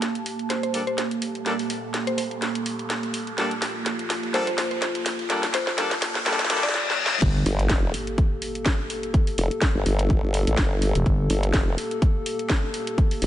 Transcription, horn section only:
0.74 G3 A#3 D4 A4
1.46 G3 A#3 D4 A4
3.38 G3 A#3 D4 A4
4.34 G3 A#3 D4 A4
5.30 G3 A#3 D4 A4
5.78 G3 A#3 D4 A4
6.26 G3 A#3 D4 A4
6.50 G3 A#3 D4 A4

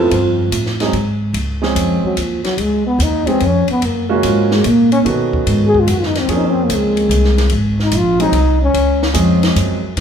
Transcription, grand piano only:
0.80 F#3 G#3 C4 D#4 G#4
1.62 F3 G#3 C4 C#4 G#4
3.26 F3 G#3 B3 C#4 G#4
4.09 G#3 A#3 C#4 F4 F#4
5.04 D#3 B3 C#4 F#4 A4
6.29 F3 A#3 C4 C#4 G#4
8.19 F#3 G#3 C4 D#4 G#4
9.13 F3 G#3 C4 C#4 G#4

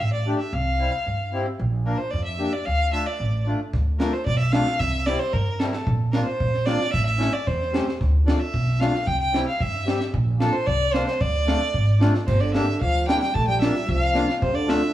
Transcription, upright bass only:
0.00 A1
0.53 C2
1.07 G2
1.59 A#1
2.13 F2
2.67 D2
3.20 A1
3.73 D2
4.27 B1
4.80 C2
5.34 G2
5.87 A#1
6.41 A#1
6.94 A1
7.47 E2
8.01 D2
8.54 B1
9.07 C2
9.61 G2
10.14 A#1
10.68 C2
11.21 D2
11.74 G#1
12.28 G1
12.81 D2
13.35 A#1
13.89 C2
14.42 D2

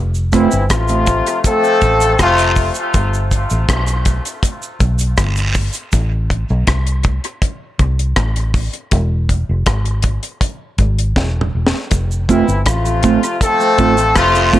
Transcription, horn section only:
0.33 E3 C4 E4
0.70 C3 F3 A3 F4
1.45 F3 A3 C4 A4
2.20 C3 F3 A3 F4
12.29 E3 C4 E4
12.66 C3 F3 A3 F4
13.43 F3 A3 C4 A4
14.16 C3 F3 A3 F4

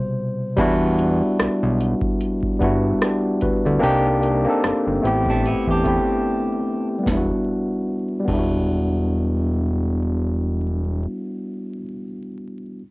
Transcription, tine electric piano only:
Already playing: B2 C3 G3 C5
0.56 G3 B3 D4 E4
0.61 F#4
2.59 G3 B3 D4 E4
2.64 F#4
3.03 D4 G4
3.42 F#4 B4
3.66 A4 D5
3.79 A#3 C4 D4 D#4
3.84 G4
4.45 A#3 C4 D4 D#4
4.50 A4
5.02 A3 B3 C4 E4
5.07 G4
5.84 A3 B3 C4 E4
5.88 G4
6.99 G3
7.03 B3
7.08 D4
7.12 E4
7.17 F#4
8.20 G3
8.25 B3
8.29 D4
8.34 E4
8.39 F#4

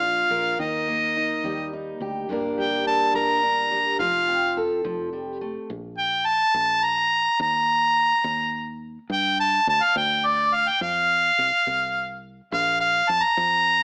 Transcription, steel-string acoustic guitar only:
Already playing: A#2 F3 D4
0.02 F4
0.30 A#4
0.59 D#3
0.88 A#3
1.17 D#4
1.44 G3
1.73 D#4
2.01 G4
2.29 G2 G3 A#3 D4 A#4
2.58 G3
2.87 D4
3.15 A#4
3.43 D4
3.71 G3
4.00 F3
4.28 C4
4.57 A4
4.84 F3
5.13 G3
5.41 A3

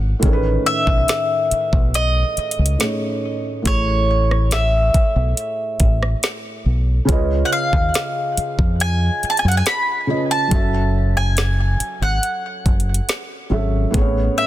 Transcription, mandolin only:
0.66 E5
1.95 D#5
3.67 C#5
4.53 E5
7.45 F#5
7.53 F5
8.81 G#5
9.30 A5
9.39 G#5
9.48 F#5
9.57 G#5
9.67 B5
10.31 A5
11.17 G#5
12.03 F#5
14.38 E5

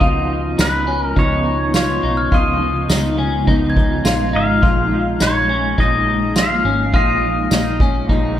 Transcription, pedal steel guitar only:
Already playing: D#5
0.61 B4
1.03 A#4
1.19 C#5
1.76 C#5
2.34 D#5
4.36 F5
5.22 C#5
5.80 D#5
6.38 F5
6.96 D#5

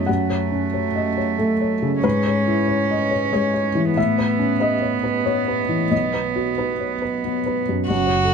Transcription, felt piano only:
Already playing: B1 F#2 B3 B4 D#5
0.06 F#2 F#5
0.30 C#5
0.52 C#4
0.74 C#5
0.96 D#5
1.18 C#5
1.38 A3 A4
1.61 C#5
1.82 C#3
2.03 G#2 B4
2.26 C#5
2.47 E4
2.68 C#5
2.91 D#5
3.11 C#5
3.32 G#3 C#5
3.54 C#5
3.75 E3
3.96 A2 E5
4.18 B4
4.39 C#4
4.60 B4 D#5
4.82 C#5
5.04 B4
5.26 B3 C#5
5.48 B4
5.69 E3
5.91 B1 D#5
6.14 B4
6.36 F#4
6.58 B4
6.80 C#5
7.02 B4
7.25 B3
7.46 B4
7.69 F#2
7.90 F#2
8.07 C#5
8.24 A4

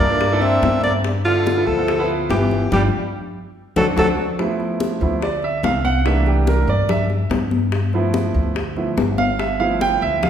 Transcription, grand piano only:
0.09 A#3 D4 E4 A#4
0.32 A#3 D4 E4 A4
1.25 B3 E4 F4 A4
1.57 B3 E4 F4 A4
1.78 B3 E4 F4 A4
1.99 B3 E4 F4 B4
2.73 D4 F4 G4
3.77 C4 D4 F#4
3.97 C4 D4 F#4
4.39 F3 A3 B3 E4
5.01 F3 A3 B3 E4
5.23 D5
5.44 E5
5.65 F5
5.85 F#5
6.05 E3 A3 A#3 D4 E5
6.27 G4
6.48 A#4
6.69 D5
6.90 E5
7.94 F3 A3 B3 E4
8.77 F3 A3 B3 E4
9.18 F5
9.39 E5
9.59 F3 A3 B3 E4 F5
9.82 G5
10.02 E5
10.23 F5

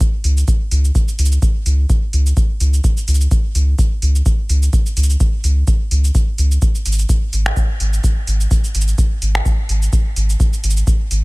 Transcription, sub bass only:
0.24 C#2
0.71 C#2
1.19 C#2
1.66 C#2
2.13 C#2
2.60 C#2
3.08 C#2
3.55 C#2
4.02 C#2
4.49 C#2
4.97 C#2
5.44 C#2
5.91 C#2
6.38 C#2
6.86 G#1
7.33 G#1
7.80 G#1
8.27 G#1
8.75 G#1
9.22 G#1
9.69 G#1
10.16 G#1
10.64 G#1
11.11 G#1

